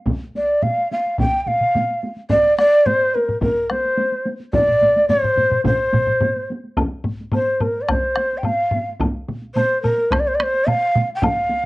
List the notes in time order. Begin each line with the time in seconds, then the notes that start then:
0.06 taiko, taiko mid, taiko high
0.23 taiko high
0.35 D5, taiko high
0.62 F5, taiko mid, taiko high
0.78 taiko high
0.91 F5, taiko high
1.06 taiko high
1.18 G5, taiko, taiko mid, taiko high
1.34 taiko high
1.41 G5
1.47 F5, taiko mid, taiko high
1.61 taiko mid, taiko high
1.75 taiko mid, taiko high
1.90 taiko high
2.03 taiko high
2.16 taiko high
2.30 D5, taiko, taiko low-mid, taiko high
2.45 taiko high
2.58 D5, taiko rim, taiko high
2.86 C5, taiko low-mid, taiko high
3.01 taiko high
3.15 A#4, taiko high
3.29 taiko low-mid, taiko high
3.41 A#4, taiko, taiko low-mid, taiko high
3.70 C5, taiko rim, taiko high
3.85 taiko high
3.98 taiko high
4.12 taiko high
4.25 taiko high
4.40 taiko high
4.53 D5, taiko, taiko low-mid, taiko mid, taiko high
4.68 taiko low-mid, taiko mid, taiko high
4.81 taiko low-mid, taiko mid, taiko high
4.96 taiko high
5.09 C5, taiko low-mid, taiko mid, taiko high
5.23 taiko low-mid, taiko mid, taiko high
5.37 taiko low-mid, taiko mid, taiko high
5.50 taiko low-mid, taiko mid, taiko high
5.64 C5, taiko, taiko low-mid, taiko mid, taiko high
5.93 taiko low-mid, taiko mid, taiko high
6.07 taiko low-mid, taiko mid, taiko high
6.21 taiko low-mid, taiko mid, taiko high
6.36 taiko high
6.50 taiko high
6.65 taiko high
6.77 taiko, taiko high, high woodblock
6.92 taiko high
7.04 taiko low-mid, taiko high
7.20 taiko high
7.32 C5, taiko low-mid, taiko high, high woodblock
7.47 taiko high
7.60 A#4, taiko low-mid, taiko high, high woodblock
7.75 taiko high
7.81 D5
7.88 C5, taiko rim, taiko, taiko high, high woodblock
8.03 taiko high
8.16 taiko rim, taiko high
8.33 taiko high
8.38 G5
8.43 F5, taiko low-mid, taiko high, high woodblock
8.71 taiko low-mid, taiko high
8.89 taiko high
9.00 taiko, taiko high, high woodblock
9.15 taiko high
9.28 taiko mid, taiko high
9.42 taiko high
9.55 C5, taiko mid, taiko high, high woodblock
9.70 taiko high
9.82 A#4, taiko mid, taiko high, high woodblock
9.97 taiko high
10.11 C5, taiko rim, taiko, taiko high, high woodblock
10.20 D5
10.26 C5, taiko high
10.35 D5
10.40 C5, taiko rim, taiko high
10.54 taiko high
10.67 F5, taiko mid, taiko high, high woodblock
10.96 taiko mid, taiko high
11.09 taiko high
11.15 G5
11.22 F5, taiko, taiko low-mid, taiko high, high woodblock
11.36 taiko high
11.50 taiko high